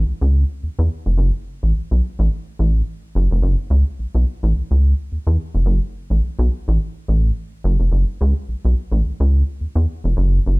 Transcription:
0.07 0.13 C#2 soft
0.21 0.44 C#2 medium
0.63 0.69 E2 soft
0.79 0.89 E2 medium
1.06 1.16 F1 medium
1.18 1.31 F#1 loud
1.63 1.73 A1 medium
1.76 1.82 B1 soft
1.91 2.01 B1 medium
2.19 2.29 A1 medium
2.59 2.82 A1 loud
3.15 3.28 F#1 loud
3.31 3.41 F1 loud
3.42 3.56 F#1 loud
3.70 3.84 C#2 medium
3.99 4.06 B1 medium
4.15 4.25 B1 medium
4.43 4.53 A1 medium
4.56 4.62 C#2 soft
4.71 4.94 C#2 medium
5.12 5.18 E2 medium
5.27 5.37 E2 medium
5.55 5.65 F1 medium
5.66 5.80 F#1 loud
6.10 6.21 A1 medium
6.23 6.30 B1 soft
6.39 6.49 B1 loud
6.68 6.78 A1 loud
7.08 7.31 A1 medium
7.64 7.77 F#1 loud
7.80 7.90 F1 medium
7.92 8.05 F#1 loud
8.21 8.34 C#2 loud
8.48 8.55 B1 medium
8.65 8.75 B1 medium
8.92 9.02 A1 medium
9.05 9.11 C#2 soft
9.20 9.43 C#2 medium
9.61 9.67 E2 soft
9.75 9.86 E2 medium
10.04 10.15 F1 medium
10.17 10.40 F#1 loud
10.46 10.59 F#1 loud

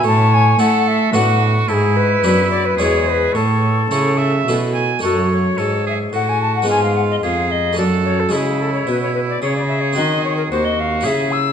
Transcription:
0.04 0.55 A2 medium
0.04 0.59 A2 medium
0.04 0.58 C#5 medium
0.04 0.35 A5 loud
0.34 0.61 G#5 loud
0.59 1.10 A3 medium
0.59 1.15 A3 medium
0.59 0.98 C#4 medium
0.59 0.99 E4 medium
0.59 1.12 A4 medium
0.59 0.89 F#5 loud
0.87 1.16 E5 medium
1.13 1.67 A2 medium
1.13 1.64 A2 medium
1.13 1.64 B3 soft
1.13 1.65 D4 soft
1.13 1.70 F#4 medium
1.13 1.65 F#4 medium
1.13 1.42 F#5 medium
1.68 2.22 G#2 medium
1.68 2.19 G#2 medium
1.68 2.76 E4 medium
1.68 1.74 A4 medium
1.73 1.97 G#4 loud
1.96 2.50 B4 loud
2.23 2.77 F#2 medium
2.23 2.75 F#2 medium
2.23 2.63 B3 soft
2.23 2.63 D4 soft
2.23 2.64 E4 medium
2.51 2.66 D5 loud
2.65 2.80 B4 medium
2.77 3.33 E2 medium
2.77 3.31 E2 medium
2.77 3.31 G#3 soft
2.77 3.31 B3 soft
2.77 3.31 E4 soft
2.77 3.35 G#4 medium
2.77 3.08 C#5 loud
3.06 3.37 B4 medium
3.06 3.11 C5 medium
3.33 3.90 A2 medium
3.33 3.87 A2 medium
3.33 4.47 A4 medium
3.33 3.85 C#5 medium
3.90 4.46 C#3 medium
3.90 4.43 C#3 medium
3.90 4.31 A3 soft
3.90 4.31 C#4 soft
3.90 4.32 E4 medium
3.90 4.19 C#5 medium
4.17 4.57 E5 medium
4.47 5.02 B2 medium
4.47 5.00 B2 medium
4.47 4.88 A3 soft
4.47 4.88 C#4 soft
4.47 4.89 E4 soft
4.74 5.01 G#5 medium
4.99 5.54 F#2 medium
4.99 5.55 A3 soft
4.99 5.55 C#4 soft
4.99 6.64 F#4 soft
4.99 5.60 C#5 medium
5.03 5.55 F#2 soft
5.03 5.29 A4 medium
5.32 5.85 C#5 medium
5.58 6.12 G#2 medium
5.58 6.09 G#2 soft
5.58 5.86 A4 medium
5.87 5.99 G#4 medium
5.87 5.94 E5 medium
6.13 6.67 A2 medium
6.13 6.64 A2 soft
6.13 6.67 F#4 medium
6.13 6.30 F#5 medium
6.29 6.41 G#5 medium
6.41 6.54 A5 medium
6.55 6.68 F#5 medium
6.62 7.71 G#3 soft
6.62 7.72 B3 soft
6.62 7.73 F4 soft
6.68 7.22 G#2 medium
6.68 7.19 G#2 soft
6.68 7.22 F4 medium
6.68 6.82 G#5 medium
6.83 6.94 F5 medium
6.95 7.01 F#5 medium
7.10 7.16 D#5 medium
7.23 7.79 F2 medium
7.23 7.74 F2 soft
7.23 7.76 G#4 medium
7.23 7.52 F5 medium
7.51 7.77 D#5 medium
7.73 8.28 A3 soft
7.73 8.29 C#4 soft
7.73 8.30 F#4 soft
7.77 8.32 F#2 medium
7.77 8.28 F#2 soft
7.77 8.34 A4 medium
7.77 7.83 D5 medium
8.04 8.21 C#5 medium
8.19 8.32 A4 medium
8.29 8.86 C#3 medium
8.29 8.84 G#3 soft
8.29 9.91 C#4 soft
8.29 9.92 E4 soft
8.29 9.42 E4 medium
8.29 8.37 A4 medium
8.33 8.84 C#3 soft
8.33 8.62 G#4 medium
8.60 8.72 A4 medium
8.73 8.89 C#5 medium
8.87 9.38 B2 soft
8.87 9.41 B2 medium
8.87 9.01 B4 medium
9.01 9.13 C#5 medium
9.14 9.20 B4 medium
9.28 9.41 D5 medium
9.42 9.92 C#3 soft
9.42 9.99 C#3 medium
9.42 10.49 G#4 medium
9.42 9.55 C#5 medium
9.55 9.61 D5 medium
9.68 9.82 E5 medium
9.80 9.95 C#5 medium
9.93 10.99 C4 soft
9.93 11.00 F#4 soft
9.93 10.22 D#5 medium
9.98 10.51 D#3 medium
9.98 10.47 D#3 medium
10.24 10.36 C#5 medium
10.37 10.43 A#4 medium
10.50 11.06 D#2 medium
10.50 11.01 D#2 soft
10.50 11.06 F#4 medium
10.50 10.66 C5 medium
10.64 10.81 D#5 medium
10.80 11.07 F5 medium
11.01 11.53 C#4 soft
11.01 11.53 E4 soft
11.01 11.40 G#4 medium
11.01 11.53 G#4 soft
11.05 11.53 C#3 medium
11.05 11.53 C#3 soft
11.05 11.33 E5 medium
11.31 11.53 E6 medium

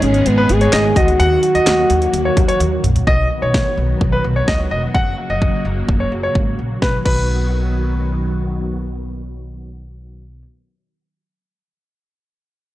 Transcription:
0.00 0.19 G#1 loud
0.00 3.04 D#3 medium
0.00 1.18 G#3 medium
0.00 1.18 B3 medium
0.00 0.28 C#4 loud
0.00 1.18 G#4 medium
0.00 closed hi-hat medium
0.14 closed hi-hat medium
0.26 0.42 G#1 loud
0.26 0.51 B3 loud
0.26 closed hi-hat medium
0.38 0.47 B4 medium
0.49 0.66 G#1 loud
0.49 0.98 G#4 loud
0.49 closed hi-hat medium
0.61 0.71 C#5 medium
0.61 closed hi-hat medium
0.73 0.89 G#1 loud
0.73 0.83 D#5 medium
0.73 snare loud
0.73 clap loud
0.73 closed hi-hat medium
0.96 1.13 C#2 medium
0.96 2.84 F#4 loud
0.96 1.06 D#5 medium
0.96 kick loud
0.96 closed hi-hat medium
1.08 closed hi-hat medium
1.19 1.36 D#2 loud
1.19 3.05 F#3 medium
1.19 3.05 A#3 medium
1.19 3.05 F#4 medium
1.19 1.39 F#5 loud
1.19 closed hi-hat medium
1.43 closed hi-hat medium
1.55 1.63 D#2 medium
1.55 1.88 D#5 medium
1.55 closed hi-hat medium
1.66 1.83 D#2 loud
1.66 snare loud
1.66 clap medium
1.66 closed hi-hat medium
1.90 2.06 D#2 loud
1.90 closed hi-hat medium
2.02 closed hi-hat medium
2.13 2.30 D#2 loud
2.13 closed hi-hat medium
2.25 2.35 C#5 medium
2.37 2.53 D#2 loud
2.37 kick medium
2.37 closed hi-hat medium
2.48 2.58 C#5 medium
2.48 closed hi-hat medium
2.60 2.77 D#2 loud
2.60 closed hi-hat medium
2.60 high tom medium
2.84 3.00 A#1 medium
2.84 closed hi-hat medium
2.84 mid tom loud
2.96 closed hi-hat medium
2.96 floor tom loud
3.07 3.24 B1 loud
3.07 4.93 D#3 medium
3.07 6.79 F#3 medium
3.07 4.93 B3 medium
3.07 6.78 F#4 medium
3.07 3.27 D#5 loud
3.07 kick loud
3.42 3.59 B1 medium
3.42 3.75 C#5 medium
3.54 kick loud
3.54 snare loud
3.77 3.94 B1 medium
4.01 4.17 B1 medium
4.01 kick loud
4.12 4.22 B4 medium
4.24 4.41 B1 loud
4.36 4.46 C#5 medium
4.48 4.64 C#2 medium
4.48 4.57 D#5 medium
4.48 kick loud
4.48 snare loud
4.71 4.88 E1 medium
4.71 4.81 D#5 medium
4.94 5.11 F#1 loud
4.94 6.80 C#3 medium
4.94 6.80 A#3 medium
4.94 5.14 F#5 medium
4.94 kick loud
5.30 5.46 F#1 medium
5.30 5.63 D#5 medium
5.42 kick loud
5.65 5.81 F#1 medium
5.89 6.05 F#1 medium
5.89 kick loud
6.00 6.10 C#5 medium
6.12 6.28 F#1 medium
6.23 6.33 C#5 medium
6.35 6.52 G#1 medium
6.35 kick loud
6.59 6.75 A#1 medium
6.82 6.95 B1 medium
6.82 10.18 D#3 medium
6.82 10.18 F#3 medium
6.82 10.18 B3 medium
6.82 10.18 F#4 medium
6.82 6.95 B4 medium
6.82 kick loud
6.82 snare medium
7.05 10.42 B1 medium
7.05 8.19 B4 medium
7.05 kick loud
7.05 crash medium

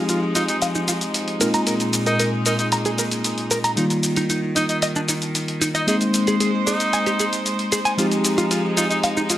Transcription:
0.00 1.37 F3 medium
0.00 1.39 F3 medium
0.00 1.37 G#3 medium
0.00 1.39 G#3 medium
0.00 1.37 C4 medium
0.00 1.38 D#4 medium
0.00 3.74 D#4 medium
0.00 1.38 G4 medium
0.09 0.19 F4 medium
0.09 closed hi-hat medium
0.09 shaker soft
0.35 0.44 D#4 medium
0.35 0.42 F4 medium
0.35 closed hi-hat medium
0.35 shaker medium
0.48 0.57 D#4 medium
0.48 closed hi-hat soft
0.48 shaker soft
0.62 0.66 F5 medium
0.62 closed hi-hat medium
0.62 shaker soft
0.75 0.79 D#4 medium
0.75 shaker soft
0.88 0.92 F4 medium
0.88 closed hi-hat medium
0.88 shaker medium
1.01 closed hi-hat soft
1.01 shaker soft
1.14 closed hi-hat medium
1.14 shaker soft
1.28 closed hi-hat soft
1.39 3.75 A#2 medium
1.39 3.74 G#3 medium
1.39 3.75 G#3 medium
1.39 3.74 A#3 medium
1.39 3.74 C4 medium
1.39 3.74 D#4 medium
1.39 3.75 F4 medium
1.39 1.47 A#4 medium
1.39 closed hi-hat medium
1.39 shaker medium
1.54 1.60 A#5 medium
1.54 closed hi-hat soft
1.54 shaker soft
1.67 1.74 A#4 medium
1.67 closed hi-hat medium
1.67 shaker soft
1.80 closed hi-hat soft
1.80 shaker soft
1.93 closed hi-hat medium
1.93 shaker medium
2.06 2.23 D#4 medium
2.06 2.13 A#4 medium
2.06 closed hi-hat soft
2.06 shaker soft
2.19 2.29 A#4 medium
2.19 closed hi-hat medium
2.19 shaker soft
2.46 2.54 D#4 medium
2.46 2.53 A#4 medium
2.46 closed hi-hat medium
2.46 shaker medium
2.59 2.67 D#4 medium
2.59 closed hi-hat soft
2.59 shaker soft
2.72 2.76 A#5 medium
2.72 closed hi-hat medium
2.72 shaker soft
2.85 2.89 G#4 medium
2.85 closed hi-hat soft
2.85 shaker soft
2.98 3.03 A#4 medium
2.98 closed hi-hat medium
2.98 shaker medium
3.11 closed hi-hat soft
3.11 shaker soft
3.24 closed hi-hat medium
3.24 shaker soft
3.38 closed hi-hat soft
3.51 3.58 A#4 medium
3.51 closed hi-hat medium
3.51 shaker medium
3.64 3.71 A#5 medium
3.64 closed hi-hat soft
3.64 shaker soft
3.76 5.85 D#3 medium
3.76 5.84 G3 medium
3.76 5.84 A#3 medium
3.76 3.84 D#4 medium
3.76 5.85 F4 medium
3.76 closed hi-hat medium
3.76 shaker soft
3.90 closed hi-hat soft
3.90 shaker soft
4.03 closed hi-hat medium
4.03 shaker medium
4.16 4.24 D#4 medium
4.16 closed hi-hat soft
4.16 shaker soft
4.30 4.40 D#4 medium
4.30 closed hi-hat medium
4.30 shaker soft
4.56 4.65 D#4 medium
4.56 4.63 D#4 medium
4.56 closed hi-hat medium
4.56 shaker medium
4.69 4.78 D#4 medium
4.69 closed hi-hat soft
4.69 shaker soft
4.82 4.87 D#5 medium
4.82 closed hi-hat medium
4.82 shaker soft
4.96 5.00 D4 medium
4.96 shaker soft
5.08 5.13 D#4 medium
5.08 closed hi-hat medium
5.08 shaker medium
5.22 closed hi-hat soft
5.22 shaker soft
5.35 closed hi-hat medium
5.35 shaker soft
5.48 closed hi-hat soft
5.61 5.68 D#4 medium
5.61 closed hi-hat medium
5.61 shaker medium
5.74 5.83 D#4 medium
5.74 5.81 D#5 medium
5.74 closed hi-hat soft
5.74 shaker soft
5.87 7.95 G#3 medium
5.87 7.96 G#3 medium
5.87 7.95 A#3 medium
5.87 7.95 C4 medium
5.87 5.96 D#4 medium
5.87 7.96 D#4 medium
5.87 5.95 G#4 medium
5.87 7.96 C5 medium
5.87 closed hi-hat medium
5.87 shaker soft
6.01 closed hi-hat soft
6.01 shaker soft
6.14 closed hi-hat medium
6.14 shaker medium
6.27 6.34 G#4 medium
6.27 closed hi-hat soft
6.27 shaker soft
6.40 6.50 G#4 medium
6.40 closed hi-hat medium
6.40 shaker soft
6.67 7.40 D#4 medium
6.67 6.74 G#4 medium
6.67 closed hi-hat medium
6.67 shaker medium
6.80 closed hi-hat soft
6.80 shaker soft
6.93 6.97 G#5 medium
6.93 closed hi-hat medium
6.93 shaker soft
7.06 7.10 G4 medium
7.06 closed hi-hat soft
7.06 shaker soft
7.19 7.24 G#4 medium
7.19 closed hi-hat medium
7.19 shaker medium
7.33 closed hi-hat soft
7.33 shaker soft
7.46 closed hi-hat medium
7.46 shaker soft
7.59 closed hi-hat soft
7.72 7.79 G#4 medium
7.72 closed hi-hat medium
7.72 shaker medium
7.85 7.92 G#5 medium
7.85 closed hi-hat soft
7.85 shaker soft
7.97 9.38 F3 medium
7.97 9.38 G#3 medium
7.97 9.38 C4 medium
7.97 9.38 D#4 medium
7.97 8.05 F4 medium
7.97 9.38 G4 medium
7.97 closed hi-hat medium
7.97 shaker soft
8.12 closed hi-hat soft
8.12 shaker soft
8.25 closed hi-hat medium
8.25 shaker medium
8.38 8.44 F4 medium
8.38 closed hi-hat soft
8.38 shaker soft
8.51 8.61 F4 medium
8.51 closed hi-hat medium
8.51 shaker soft
8.77 8.86 D#4 medium
8.77 8.84 F4 medium
8.77 closed hi-hat medium
8.77 shaker medium
8.90 8.99 D#4 medium
8.90 closed hi-hat soft
8.90 shaker soft
9.04 9.08 F5 medium
9.04 closed hi-hat medium
9.04 shaker soft
9.17 9.21 D#4 medium
9.17 shaker soft
9.30 9.34 F4 medium
9.30 closed hi-hat medium
9.30 shaker medium

